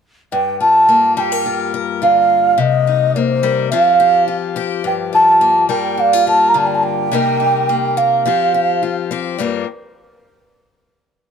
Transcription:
0.32 G2 G5
0.60 F4 A5
0.89 A#3
1.16 G3 G4 G5 A5
1.32 A#4
1.46 F4
1.74 A#4
2.02 D3 F4 F5
2.58 C3 D#5
2.87 D#4
3.14 A#3 C5 D5
3.43 G3 A#4
3.70 F3 C4 F4 G4 F5
4.00 G4
4.28 F4
4.56 C4 G4
4.84 G2 G5
5.13 F4 A5
5.41 A#3
5.69 G3 A#4 G5
5.97 D4 F5
6.13 F4
6.27 A#4 A5
6.48 A#5
6.54 D3 F4 A5
6.66 G5
6.75 A5
6.83 G5
7.11 C3 G3 A#3 D#4 A#4
7.40 D#4
7.69 A#3
7.97 A#4 F5, muted steel-string acoustic guitar stroke
8.26 F3 C4 F4 G4
8.54 G4
8.83 F4
9.11 C4 G4
9.38 G2 G3 A#3 F4 A#4 D5

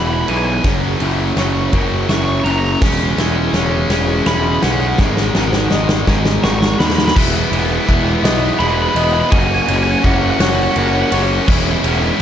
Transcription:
Already playing: E1 E2 B2 E3 E4 G#4 D#5
0.07 B5
0.13 B5
0.21 B5
0.28 B1 E2 B2 E3 B3 G#5, ride
0.38 G#5
0.46 G#5
0.55 G#5
0.64 F#1 F#2 C#3 F#3, kick, snare, ride
1.00 F#1 F#2 C#3 F#3 E4, ride
1.36 F#1 F#2 C#3 F#3 C#5, snare, ride
1.73 F#1 F#2 C#3 F#3 A#4, kick, ride
2.09 F#1 F#2 C#3 F#3 E4 C#6, snare, ride
2.18 C#6
2.24 C#6
2.32 C#6
2.40 F#1 C#6
2.44 F#2 C#3 F#3 C#4 A#5, ride
2.51 A#5
2.58 A#5
2.65 A#5
2.72 A#5
2.82 E1 C#3 E3 G#3 C#4, kick, snare, crash
3.17 E1 C#3 G#3 C#4 E4, snare, ride
3.53 E1 C#3 G#3 C#4 C#5, snare, ride
3.90 E1 C#3 G#3 C#4 G#4, snare, ride
4.26 E1 C#3 G#3 C#4 E4 B5, snare, ride
4.35 B5
4.44 B5
4.52 B5
4.62 B1 C#3 G#3 B3 C#4 F#5, snare, ride
4.72 F#5
4.80 F#5
4.88 F#5
4.98 G#1 G#2 D#3 G#3, kick, snare
5.17 snare
5.35 G#1 G#2 D#3 G#3 F#4, snare
5.53 snare
5.71 G#1 G#2 D#3 G#3 D#5, snare
5.89 snare
6.07 G#1 G#2 D#3 G#3 G#4, kick, snare
6.25 snare
6.44 G#1 G#2 D#3 G#3 F#4 C#6, snare
6.50 C#6
6.59 C#6, snare
6.66 C#6
6.74 C#6
6.80 D#2 G#2 D#3 G#3 B3 B5, snare
6.87 B5, snare
6.96 B5, snare
7.05 B5, snare
7.15 E1 E3 G#3 B3 E4, kick, crash
7.50 E1 G#3 B3 E4, ride
7.86 E1 E3 G#3 B3 E4, kick, ride
8.23 B1 G#3 B3 E4 D#5, snare, ride
8.58 E1 E3 G#3 B3 E4 G#4 B5, ride
8.67 B5
8.75 B5
8.82 B5
8.89 B5
8.95 E1 B3 E4 D#5 B5, ride
8.99 G#3
9.04 B5
9.13 B5
9.20 B5
9.30 F#1 F#3 A#3 C#4 F#4 G#5, kick, ride
9.39 G#5
9.46 G#5
9.55 G#5
9.62 G#5
9.67 F#1 A#3 C#4 F#4 G#5, ride
9.76 G#5
9.84 G#5
9.92 G#5
9.99 G#5
10.03 F#1 F#3 A#3 C#4 E4 F#4 F#5, kick, ride
10.14 F#5
10.22 F#5
10.31 F#5
10.39 F#1 A#3 C#4 F#4 C#5 F#5, snare, ride
10.49 F#5
10.55 F#5
10.64 F#5
10.72 F#3 F#5
10.76 F#1 A#3 C#4 F#4 A#4 F#5, ride
10.87 F#5
10.93 F#5
11.02 F#5
11.10 F#1 C#4 F#4 C#5 F#5, ride
11.15 A#3
11.46 E1 E3 G#3 C#4 E4, kick, crash
11.83 E1 G#3 C#4 E4, ride

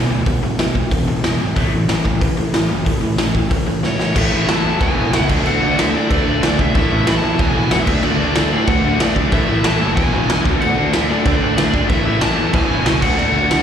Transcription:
0.10 D2 E2 B2
0.26 E1 E2 B2, kick, open hi-hat
0.42 E1 E2 B2
0.59 E1 E2 B2, snare, open hi-hat
0.75 E1 E2 B2, kick
0.91 E1 E2 B2, kick, open hi-hat
1.08 E1 E2 B2
1.24 E1 E2 B2, snare, open hi-hat
1.40 G#1 E2 B2
1.56 A1 A2 E3 A3, kick, open hi-hat
1.72 A1 A2 E3
1.88 A1 A2 E3, snare, open hi-hat
2.05 A1 A2 E3, kick
2.21 A1 A2 E3, kick, open hi-hat
2.37 A1 A2 E3
2.54 A1 A2 E3, snare, open hi-hat
2.69 F#1 A2 E3
2.85 A1 A2 E3, kick, open hi-hat
3.01 A1 A2 E3
3.18 A1 A2 E3, snare, open hi-hat
3.34 A1 A2 E3, kick
3.50 A1 A2 E3, kick, open hi-hat
3.67 A1 A2 E3
3.83 A1 A2 E3 C#5, snare
4.00 A1 A2 E3, snare
4.15 A1 A2 E3 A3 E5, kick, crash
4.31 A1 A2 E3 A3
4.48 A1 A2 E3 A3 A5, snare, crash
4.64 E2 A2 E3 A3
4.80 E1 E2 B2 E3 G#5, kick, crash
4.96 E1 E2 B2 E3
5.12 C#2 E2 B2 E3, snare, crash
5.29 D2 D3 A3 D4, kick, crash
5.44 D2 D3 A3 D4 F#5, crash
5.61 D2 D3 A3 D4
5.77 D2 D3 A3 D4 E5, snare, crash
5.93 A2 D3 A3 D4 D5
6.09 D2 D3 A3 D4, kick, crash
6.25 D2 D3 A3 D4
6.42 D2 D3 A3 D4, snare, crash
6.58 B1 D3 A3 D4 E5, kick
6.73 A1 A2 E3 A3, kick, crash
6.90 A1 A2 E3 A3
7.06 A1 A2 E3 A3 B5, snare, crash
7.17 A5
7.22 E2 A2 E3 A3
7.38 E1 E2 B2 E3 G#5, kick, crash
7.49 G#5
7.54 E1 E2 B2 E3
7.70 E1 E2 B2 E3 F#5, snare, crash
7.80 E5
7.87 D2 D3 A3 D4, kick, crash
8.03 D2 D3 A3 D4 D5, crash
8.19 D2 D3 A3 D4
8.35 D2 D3 A3 D4, snare, crash
8.51 A2 D3 A3 D4
8.67 D2 D3 A3 D4 F#5, kick, crash
8.83 D2 D3 A3 D4
8.99 D2 D3 A3 D4 D5, snare, crash
9.16 B1 D3 A3 D4, kick
9.32 A1 A2 E3 A3 E5, kick, crash
9.48 A1 A2 E3 A3
9.64 A1 A2 E3 A3 A5, snare, crash
9.81 F#1 A2 E3 A3
9.96 E1 E2 B2 E3 G#5, kick, crash
10.13 E1 E2 B2 E3
10.29 E1 E2 B2 E3, snare, crash
10.45 D2 D3 A3 D4, kick
10.61 D2 D3 A3 D4 F#5, crash
10.77 D2 D3 A3 D4
10.93 D2 D3 A3 D4 E5, snare, crash
11.09 A2 D3 A3 D4 D5
11.25 D2 D3 A3 D4, kick, crash
11.41 D2 D3 A3 D4
11.57 D2 D3 A3 D4 D5, snare, crash
11.74 G#1 D3 A3 D4, kick
11.89 A1 A2 E3 A3 E5, kick, crash
12.05 A1 A2 E3 A3
12.21 A1 A2 E3 A3 A5, snare, crash
12.37 E2 A2 E3 A3
12.53 E1 E2 B2 E3 G#5, kick, crash
12.70 E1 E2 B2 E3
12.86 C#2 E2 B2 E3, snare, crash
13.02 D2 D3 A3 D4 F#5, kick, crash
13.18 D2 D3 A3 D4 F#5, crash
13.34 D2 D3 A3 D4
13.51 D2 D3 A3 D4, snare, crash

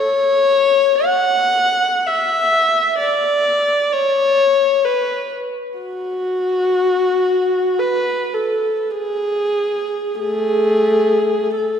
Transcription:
Already playing: C#5
1.05 F#5
2.06 E5
2.99 D5
3.92 C#5
4.84 B4
5.77 F#4
7.79 B4
8.34 A4
8.91 G#4
10.18 A3 G#4
11.57 A4

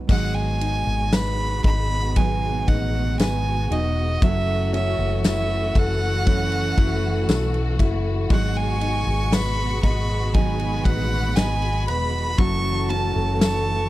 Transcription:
Already playing: B3 D#4 B4
0.07 G#1 G#2 B2 D#3 F#3 G#3 B3 F#4 F#5, kick, crash
0.12 D#4 G#4
0.34 G#5
0.61 D#4, ride
0.87 G#1
1.13 B4 B5, snare, ride, tambourine
1.64 G#1 D#4 B5, kick, ride
2.16 G#2 D#3 F#3 B3 D#4 G#4 B4 G#5, kick, ride
2.68 A1 D#4 F#5, kick, ride
3.19 G#1 B4 G#5, snare, ride, tambourine
3.70 E1 F#3 B3 D#4 G#4 D#5, ride
4.21 F#1 E3 F#3 A3 C#4 E4 E5, kick, ride
4.26 A4
4.73 C#4 E5, ride
4.99 F#1
5.24 E4 E5, snare, ride, tambourine
5.75 F#1 A4 F#5, kick, ride
6.25 F#3 C#4 E4, kick, ride
6.30 A4
6.52 ride
6.78 F#1 E4, kick, ride
7.28 B1 A4, snare, ride, tambourine
7.54 ride
7.79 F#1 E4, kick, ride
8.29 G#1 G#2 B2 D#3 F#3 G#3 B3 F#5 C#6, kick, ride
8.33 D#4 G#4
8.57 G#5
8.81 D#4, ride
9.07 G#1
9.32 B4 B5, snare, ride, tambourine
9.83 G#1 D#5 B5, kick, ride
10.33 G#2 D#3 F#3 B3 D#4 G#5 B5, kick, ride
10.37 D#4 G#4
10.59 ride
10.84 A1 B4 F#5, kick, ride
11.36 G#1 D#5 G#5, snare, ride, tambourine
11.62 ride
11.87 E1 B4 B5, ride
12.37 F#1 E3 F#3 A3 C#4 E4 A5 C#6, kick, ride
12.42 A4
12.89 C#4 A5, ride
13.16 F#1
13.40 A4 A5 C#6, snare, ride, tambourine

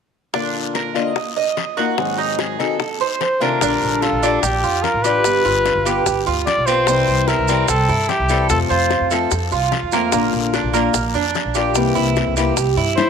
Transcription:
0.34 A#2 D3 A#3 D4 F4, high bongo, long guiro
0.55 high bongo
0.75 A#4, high bongo, short guiro
0.94 D3 A#3 D4 F4 D#5, short guiro
1.15 muted steel-string acoustic guitar stroke, high bongo, long guiro
1.36 D#5, high bongo
1.57 high bongo, low bongo, short guiro
1.77 A#3 D#4 F4 F#4 A#4, high bongo, short guiro
1.97 G#2 D#3 F#3 C4 D#4 G#4, high bongo, long guiro
2.18 D#4, high bongo
2.39 G#4, high bongo, short guiro
2.59 D#3 F#3 C4 D#4 G#4 A4, short guiro
2.80 muted steel-string acoustic guitar stroke, high bongo, long guiro
3.00 C5, high bongo
3.21 C5, high bongo, low bongo, short guiro
3.40 C3 D#3 A3 C4 D4 F4 A#4, high bongo, short guiro
3.61 A#1 D3 G3 D4 F4, high bongo, long guiro, maracas
3.82 A#1, high bongo, maracas
4.02 F4 A4, high bongo, short guiro, maracas
4.12 A#1
4.23 G3 D4 F4, short guiro, maracas
4.42 A#1 G4, muted steel-string acoustic guitar stroke, high bongo, long guiro, maracas
4.63 F2 F4, high bongo, maracas
4.83 A#4, high bongo, low bongo, short guiro, maracas
4.94 A1
5.03 G3 D4 F4 G4 B4, high bongo, short guiro, maracas
5.24 G1 G3 B3 F4, high bongo, long guiro, maracas
5.45 G1 F4, high bongo, maracas
5.66 high bongo, short guiro, maracas
5.75 G1
5.85 B3 F4 G4, short guiro, maracas
6.06 G1, muted steel-string acoustic guitar stroke, high bongo, long guiro, maracas
6.26 D2 F4, high bongo, maracas
6.46 D5, high bongo, low bongo, short guiro, maracas
6.57 B1
6.66 B3 C4 F4 C5, high bongo, short guiro, maracas
6.87 C2 C3 E3 G3 C4 E4, high bongo, long guiro, maracas
7.07 C2, high bongo, maracas
7.28 E4 A#4, high bongo, short guiro, maracas
7.38 C2
7.48 E3 G3 C4 E4, short guiro, maracas
7.68 C2 A4, muted steel-string acoustic guitar stroke, high bongo, long guiro, maracas
7.89 G2 E4, high bongo, maracas
8.09 G4, high bongo, low bongo, short guiro, maracas
8.19 C2
8.29 E3 G3 C4 E4 A4, high bongo, short guiro, maracas
8.49 F2 C3 F3 A3 C4 F4 A4, high bongo, long guiro, maracas
8.70 F2 F4 C5, high bongo, maracas
8.90 high bongo, short guiro, maracas
9.01 F2
9.11 F3 A3 C4 F4 A4, short guiro, maracas
9.31 F2, muted steel-string acoustic guitar stroke, high bongo, long guiro, maracas
9.52 C2 F4, high bongo, maracas
9.71 high bongo, low bongo, short guiro, maracas
9.83 F2
9.92 F3 A3 A#3 C4 F4, high bongo, short guiro, maracas
10.12 A#1 D3 A#3 D4 F4, high bongo, long guiro, maracas
10.33 A#1, high bongo, maracas
10.54 D4, high bongo, short guiro, maracas
10.63 A#1
10.74 A#3 D4 F4, short guiro, maracas
10.94 A#1, muted steel-string acoustic guitar stroke, high bongo, long guiro, maracas
11.14 F2 D4, high bongo, maracas
11.34 high bongo, low bongo, short guiro, maracas
11.45 A#1
11.54 A#3 D4 F4 G4, high bongo, short guiro, maracas
11.75 C2 C3 E3 A#3 C4 E4, high bongo, long guiro, maracas
11.95 C2 E4, high bongo, maracas
12.16 high bongo, short guiro, maracas
12.27 C2
12.36 E3 A#3 C4 E4 G4, short guiro, maracas
12.57 C2, muted steel-string acoustic guitar stroke, high bongo, long guiro, maracas
12.77 G2 E4, high bongo, maracas
12.97 E4 C5, high bongo, low bongo, short guiro, maracas

